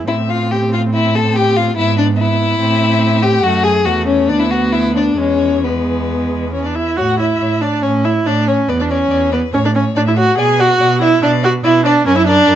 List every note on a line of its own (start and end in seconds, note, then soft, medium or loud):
0.08 1.74 A2 medium
0.08 1.74 C4 soft
0.08 0.16 E4 medium
0.08 0.32 E5 medium
0.29 0.53 F4 medium
0.29 0.51 F5 medium
0.52 0.73 G4 medium
0.52 0.60 G5 medium
0.73 0.81 F4 medium
0.73 0.81 F5 medium
0.94 1.17 E4 medium
0.94 1.17 E5 medium
1.15 1.37 A4 medium
1.15 1.36 A5 medium
1.36 1.58 G4 medium
1.36 1.56 G5 medium
1.56 1.76 F4 medium
1.56 1.65 F5 medium
1.77 2.59 G#2 medium
1.77 2.56 B3 soft
1.77 1.97 E4 medium
1.77 1.98 E5 medium
1.98 2.06 D4 medium
1.98 2.06 D5 medium
2.18 3.24 E4 medium
2.18 3.24 E5 medium
2.60 3.42 A2 medium
2.60 3.39 C4 medium
3.22 3.45 G4 medium
3.22 3.45 G5 medium
3.43 3.87 F#2 medium
3.43 3.83 A3 medium
3.43 3.65 F#4 medium
3.43 3.65 F#5 medium
3.64 3.87 G#4 medium
3.64 3.73 G#5 medium
3.85 4.30 E2 medium
3.85 4.31 A3 medium
3.85 4.06 F#4 medium
3.85 3.94 F#5 medium
4.07 4.30 C#4 medium
4.07 4.31 C#5 medium
4.29 5.17 D2 medium
4.29 5.17 B3 medium
4.29 4.41 D4 medium
4.29 4.40 D5 medium
4.40 4.52 E4 medium
4.40 4.51 E5 medium
4.51 4.74 F#4 medium
4.51 4.60 F#5 medium
4.73 4.95 E4 medium
4.73 4.82 E5 medium
4.96 5.20 D4 medium
4.96 5.05 D5 medium
5.18 6.74 E2 medium
5.18 5.62 G#3 soft
5.18 5.66 C#4 medium
5.18 5.66 C#5 medium
5.64 6.51 G#3 soft
5.64 6.53 B3 soft
5.64 6.53 B4 soft
6.54 6.67 C#4 medium
6.54 6.64 C#5 soft
6.65 6.77 D4 soft
6.65 6.77 D5 soft
6.75 6.98 E4 medium
6.75 6.97 E5 medium
6.97 7.35 A2 soft
6.97 7.19 F#4 medium
6.97 7.06 C#5 soft
6.97 7.19 F#5 medium
7.19 7.63 E4 medium
7.19 7.27 C#5 soft
7.19 7.63 E5 soft
7.41 7.78 A2 soft
7.41 7.49 C#5 soft
7.61 7.85 D4 medium
7.61 7.69 C#5 soft
7.61 7.82 D5 medium
7.83 8.21 A2 medium
7.83 8.06 C#4 medium
7.83 7.91 C#5 medium
7.83 7.91 C#5 soft
8.04 8.28 E4 medium
8.04 8.12 C#5 soft
8.04 8.12 E5 medium
8.25 8.64 A2 medium
8.25 8.49 D4 medium
8.25 8.35 C#5 soft
8.25 8.47 D5 medium
8.48 8.70 C#4 medium
8.48 8.56 C#5 medium
8.48 8.56 C#5 soft
8.68 9.06 E2 medium
8.68 8.83 B3 medium
8.68 8.73 B4 medium
8.68 8.77 D5 soft
8.80 8.92 D4 medium
8.80 8.84 D5 soft
8.90 9.32 C#4 medium
8.90 9.35 C#5 medium
8.90 8.99 D5 soft
9.11 9.49 E2 medium
9.11 9.19 D5 soft
9.32 9.41 B3 medium
9.32 9.53 B4 medium
9.32 9.40 D5 soft
9.53 9.91 A2 medium
9.53 9.58 C#4 medium
9.53 9.61 C#5 soft
9.53 9.67 C#5 medium
9.65 9.70 D4 medium
9.65 9.75 D5 medium
9.75 9.84 C#4 medium
9.75 9.83 C#5 soft
9.75 9.95 C#5 medium
9.96 10.34 A2 medium
9.96 10.01 D4 medium
9.96 10.04 C#5 soft
9.96 10.00 D5 medium
10.07 10.12 E4 medium
10.07 10.19 E5 soft
10.17 10.37 F#4 medium
10.17 10.25 C#5 soft
10.17 10.41 F#5 medium
10.38 10.76 B2 medium
10.38 10.61 G#4 medium
10.38 10.46 D5 medium
10.38 10.62 G#5 medium
10.59 11.01 F#4 medium
10.59 10.67 D5 soft
10.59 11.04 F#5 medium
10.80 11.18 B2 medium
10.80 10.88 D5 soft
11.01 11.22 E4 medium
11.01 11.09 D5 soft
11.01 11.26 E5 medium
11.23 11.60 B2 medium
11.23 11.31 D4 medium
11.23 11.31 D5 medium
11.23 11.44 D5 medium
11.43 11.52 F#4 medium
11.43 11.51 D5 soft
11.43 11.52 F#5 medium
11.64 12.02 B2 medium
11.64 11.85 E4 medium
11.64 11.72 D5 medium
11.64 11.73 E5 medium
11.85 12.06 D4 medium
11.85 11.93 D5 medium
11.85 11.94 D5 medium
12.06 12.44 F#2 medium
12.06 12.17 C#4 medium
12.06 12.14 A#4 medium
12.06 12.18 C#5 medium
12.17 12.27 E4 medium
12.17 12.27 E5 medium
12.27 12.55 D4 medium
12.27 12.35 A#4 medium
12.27 12.55 D5 medium
12.47 12.55 F#2 medium
12.47 12.55 A#4 medium